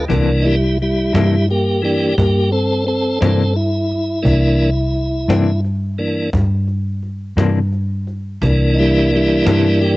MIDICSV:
0, 0, Header, 1, 5, 480
1, 0, Start_track
1, 0, Tempo, 693561
1, 64, Time_signature, 12, 3, 24, 8
1, 6899, End_track
2, 0, Start_track
2, 0, Title_t, "Tonewheel organ"
2, 0, Program_c, 0, 16
2, 59, Note_on_c, 0, 52, 50
2, 68, Note_on_c, 0, 62, 56
2, 73, Note_on_c, 0, 58, 47
2, 292, Note_on_c, 0, 63, 57
2, 315, Note_on_c, 0, 64, 85
2, 317, Note_off_c, 0, 63, 0
2, 320, Note_on_c, 0, 55, 72
2, 380, Note_off_c, 0, 52, 0
2, 385, Note_off_c, 0, 62, 0
2, 388, Note_off_c, 0, 58, 0
2, 536, Note_off_c, 0, 55, 0
2, 542, Note_off_c, 0, 64, 0
2, 568, Note_on_c, 0, 55, 69
2, 572, Note_on_c, 0, 64, 78
2, 780, Note_off_c, 0, 55, 0
2, 791, Note_off_c, 0, 64, 0
2, 795, Note_on_c, 0, 55, 63
2, 803, Note_on_c, 0, 64, 75
2, 1013, Note_off_c, 0, 55, 0
2, 1026, Note_off_c, 0, 64, 0
2, 1042, Note_on_c, 0, 67, 74
2, 1048, Note_on_c, 0, 58, 66
2, 1260, Note_off_c, 0, 58, 0
2, 1261, Note_on_c, 0, 52, 44
2, 1266, Note_off_c, 0, 67, 0
2, 1271, Note_on_c, 0, 58, 62
2, 1279, Note_on_c, 0, 62, 47
2, 1279, Note_on_c, 0, 67, 74
2, 1478, Note_off_c, 0, 52, 0
2, 1488, Note_off_c, 0, 62, 0
2, 1492, Note_off_c, 0, 58, 0
2, 1501, Note_off_c, 0, 67, 0
2, 1508, Note_on_c, 0, 58, 74
2, 1509, Note_on_c, 0, 67, 84
2, 1729, Note_off_c, 0, 58, 0
2, 1739, Note_off_c, 0, 67, 0
2, 1744, Note_on_c, 0, 60, 75
2, 1746, Note_on_c, 0, 69, 82
2, 1967, Note_off_c, 0, 60, 0
2, 1978, Note_off_c, 0, 69, 0
2, 1984, Note_on_c, 0, 60, 79
2, 1994, Note_on_c, 0, 69, 85
2, 2207, Note_off_c, 0, 60, 0
2, 2222, Note_off_c, 0, 69, 0
2, 2223, Note_on_c, 0, 60, 70
2, 2232, Note_on_c, 0, 69, 79
2, 2447, Note_off_c, 0, 60, 0
2, 2461, Note_off_c, 0, 69, 0
2, 2465, Note_on_c, 0, 64, 85
2, 2923, Note_on_c, 0, 58, 51
2, 2926, Note_on_c, 0, 52, 55
2, 2928, Note_on_c, 0, 62, 60
2, 3252, Note_off_c, 0, 58, 0
2, 3254, Note_off_c, 0, 52, 0
2, 3255, Note_off_c, 0, 62, 0
2, 3877, Note_off_c, 0, 64, 0
2, 4141, Note_on_c, 0, 58, 43
2, 4143, Note_on_c, 0, 52, 47
2, 4147, Note_on_c, 0, 62, 52
2, 4359, Note_off_c, 0, 52, 0
2, 4359, Note_off_c, 0, 58, 0
2, 4362, Note_off_c, 0, 62, 0
2, 5825, Note_on_c, 0, 52, 53
2, 5826, Note_on_c, 0, 62, 61
2, 5830, Note_on_c, 0, 58, 51
2, 6048, Note_on_c, 0, 63, 61
2, 6075, Note_off_c, 0, 63, 0
2, 6081, Note_on_c, 0, 64, 90
2, 6086, Note_on_c, 0, 55, 79
2, 6300, Note_off_c, 0, 55, 0
2, 6307, Note_off_c, 0, 64, 0
2, 6335, Note_on_c, 0, 55, 73
2, 6344, Note_on_c, 0, 64, 83
2, 6545, Note_off_c, 0, 55, 0
2, 6558, Note_off_c, 0, 64, 0
2, 6564, Note_on_c, 0, 55, 79
2, 6574, Note_on_c, 0, 64, 92
2, 6779, Note_off_c, 0, 55, 0
2, 6783, Note_off_c, 0, 58, 0
2, 6791, Note_on_c, 0, 67, 91
2, 6792, Note_on_c, 0, 58, 80
2, 6793, Note_off_c, 0, 64, 0
2, 6899, Note_off_c, 0, 52, 0
2, 6899, Note_off_c, 0, 58, 0
2, 6899, Note_off_c, 0, 62, 0
2, 6899, Note_off_c, 0, 67, 0
2, 6899, End_track
3, 0, Start_track
3, 0, Title_t, "Clean electric guitar"
3, 0, Program_c, 1, 27
3, 60, Note_on_c, 1, 52, 69
3, 63, Note_on_c, 1, 48, 63
3, 65, Note_on_c, 1, 62, 65
3, 72, Note_on_c, 1, 58, 66
3, 206, Note_off_c, 1, 52, 0
3, 207, Note_off_c, 1, 48, 0
3, 208, Note_off_c, 1, 62, 0
3, 211, Note_off_c, 1, 58, 0
3, 783, Note_on_c, 1, 62, 61
3, 786, Note_on_c, 1, 58, 59
3, 791, Note_on_c, 1, 52, 54
3, 793, Note_on_c, 1, 48, 51
3, 927, Note_off_c, 1, 62, 0
3, 929, Note_off_c, 1, 58, 0
3, 931, Note_off_c, 1, 52, 0
3, 932, Note_off_c, 1, 48, 0
3, 2220, Note_on_c, 1, 62, 65
3, 2227, Note_on_c, 1, 58, 63
3, 2234, Note_on_c, 1, 52, 61
3, 2235, Note_on_c, 1, 48, 56
3, 2366, Note_off_c, 1, 62, 0
3, 2369, Note_off_c, 1, 58, 0
3, 2373, Note_off_c, 1, 48, 0
3, 2373, Note_off_c, 1, 52, 0
3, 3662, Note_on_c, 1, 62, 76
3, 3666, Note_on_c, 1, 52, 61
3, 3666, Note_on_c, 1, 58, 65
3, 3669, Note_on_c, 1, 48, 61
3, 3807, Note_off_c, 1, 62, 0
3, 3809, Note_off_c, 1, 52, 0
3, 3809, Note_off_c, 1, 58, 0
3, 3811, Note_off_c, 1, 48, 0
3, 5101, Note_on_c, 1, 58, 75
3, 5103, Note_on_c, 1, 62, 80
3, 5109, Note_on_c, 1, 52, 69
3, 5112, Note_on_c, 1, 48, 69
3, 5247, Note_off_c, 1, 58, 0
3, 5248, Note_off_c, 1, 62, 0
3, 5251, Note_off_c, 1, 52, 0
3, 5252, Note_off_c, 1, 48, 0
3, 6546, Note_on_c, 1, 62, 70
3, 6550, Note_on_c, 1, 58, 69
3, 6554, Note_on_c, 1, 52, 62
3, 6558, Note_on_c, 1, 48, 53
3, 6690, Note_off_c, 1, 62, 0
3, 6692, Note_off_c, 1, 58, 0
3, 6694, Note_off_c, 1, 52, 0
3, 6696, Note_off_c, 1, 48, 0
3, 6899, End_track
4, 0, Start_track
4, 0, Title_t, "Fingered electric bass"
4, 0, Program_c, 2, 33
4, 72, Note_on_c, 2, 36, 89
4, 760, Note_off_c, 2, 36, 0
4, 790, Note_on_c, 2, 43, 97
4, 1479, Note_off_c, 2, 43, 0
4, 1509, Note_on_c, 2, 43, 83
4, 2199, Note_off_c, 2, 43, 0
4, 2229, Note_on_c, 2, 43, 88
4, 2919, Note_off_c, 2, 43, 0
4, 2940, Note_on_c, 2, 36, 88
4, 3634, Note_off_c, 2, 36, 0
4, 3657, Note_on_c, 2, 43, 100
4, 4353, Note_off_c, 2, 43, 0
4, 4387, Note_on_c, 2, 43, 86
4, 5078, Note_off_c, 2, 43, 0
4, 5100, Note_on_c, 2, 43, 95
4, 5795, Note_off_c, 2, 43, 0
4, 5829, Note_on_c, 2, 36, 98
4, 6520, Note_off_c, 2, 36, 0
4, 6551, Note_on_c, 2, 43, 104
4, 6899, Note_off_c, 2, 43, 0
4, 6899, End_track
5, 0, Start_track
5, 0, Title_t, "Cajon"
5, 68, Note_on_c, 9, 36, 101
5, 138, Note_off_c, 9, 36, 0
5, 306, Note_on_c, 9, 38, 28
5, 375, Note_off_c, 9, 38, 0
5, 546, Note_on_c, 9, 38, 31
5, 615, Note_off_c, 9, 38, 0
5, 795, Note_on_c, 9, 38, 107
5, 864, Note_off_c, 9, 38, 0
5, 1034, Note_on_c, 9, 38, 32
5, 1103, Note_off_c, 9, 38, 0
5, 1276, Note_on_c, 9, 38, 30
5, 1345, Note_off_c, 9, 38, 0
5, 1509, Note_on_c, 9, 36, 110
5, 1578, Note_off_c, 9, 36, 0
5, 1757, Note_on_c, 9, 38, 32
5, 1826, Note_off_c, 9, 38, 0
5, 1988, Note_on_c, 9, 38, 34
5, 2058, Note_off_c, 9, 38, 0
5, 2229, Note_on_c, 9, 38, 102
5, 2298, Note_off_c, 9, 38, 0
5, 2471, Note_on_c, 9, 38, 33
5, 2540, Note_off_c, 9, 38, 0
5, 2710, Note_on_c, 9, 38, 35
5, 2779, Note_off_c, 9, 38, 0
5, 2943, Note_on_c, 9, 36, 94
5, 3012, Note_off_c, 9, 36, 0
5, 3180, Note_on_c, 9, 38, 33
5, 3249, Note_off_c, 9, 38, 0
5, 3417, Note_on_c, 9, 38, 34
5, 3486, Note_off_c, 9, 38, 0
5, 3667, Note_on_c, 9, 38, 108
5, 3737, Note_off_c, 9, 38, 0
5, 3906, Note_on_c, 9, 38, 33
5, 3975, Note_off_c, 9, 38, 0
5, 4143, Note_on_c, 9, 38, 31
5, 4212, Note_off_c, 9, 38, 0
5, 4382, Note_on_c, 9, 36, 115
5, 4452, Note_off_c, 9, 36, 0
5, 4620, Note_on_c, 9, 38, 32
5, 4689, Note_off_c, 9, 38, 0
5, 4863, Note_on_c, 9, 38, 33
5, 4932, Note_off_c, 9, 38, 0
5, 5108, Note_on_c, 9, 38, 105
5, 5177, Note_off_c, 9, 38, 0
5, 5346, Note_on_c, 9, 38, 31
5, 5415, Note_off_c, 9, 38, 0
5, 5586, Note_on_c, 9, 38, 33
5, 5655, Note_off_c, 9, 38, 0
5, 5825, Note_on_c, 9, 36, 105
5, 5894, Note_off_c, 9, 36, 0
5, 6063, Note_on_c, 9, 38, 34
5, 6132, Note_off_c, 9, 38, 0
5, 6306, Note_on_c, 9, 38, 35
5, 6375, Note_off_c, 9, 38, 0
5, 6551, Note_on_c, 9, 38, 106
5, 6620, Note_off_c, 9, 38, 0
5, 6790, Note_on_c, 9, 38, 38
5, 6859, Note_off_c, 9, 38, 0
5, 6899, End_track
0, 0, End_of_file